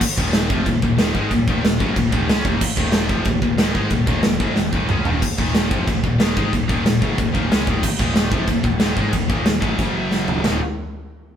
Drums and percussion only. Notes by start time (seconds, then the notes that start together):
0.01 kick, crash, china
0.18 kick
0.33 snare, china
0.50 kick
0.66 kick, china
0.82 kick
0.99 snare, china
1.15 kick
1.31 kick, china
1.48 kick
1.65 snare, china
1.80 kick
1.96 kick, china
2.12 kick
2.29 snare, china
2.45 kick
2.61 kick, china, crash
2.77 kick
2.92 snare, china
3.09 kick
3.25 kick, china
3.42 kick
3.58 snare, china
3.75 kick
3.90 kick, china
4.07 kick
4.23 snare, china
4.40 kick
4.56 snare
4.73 kick
4.89 mid tom
5.05 floor tom
5.22 kick, crash, china
5.38 kick
5.55 snare, china
5.71 kick
5.88 kick, china
6.04 kick
6.20 snare, china
6.37 kick
6.53 kick, china
6.69 kick
6.86 snare, china
7.02 kick
7.18 kick, china
7.35 kick
7.52 snare, china
7.67 kick
7.83 kick, china, crash
7.99 kick
8.16 snare, china
8.32 kick
8.48 kick, china
8.64 kick
8.80 snare, china
8.97 kick
9.13 kick, china
9.30 kick
9.46 snare, china
9.62 kick
9.79 kick, china
10.11 snare
10.28 floor tom
10.44 snare, floor tom, splash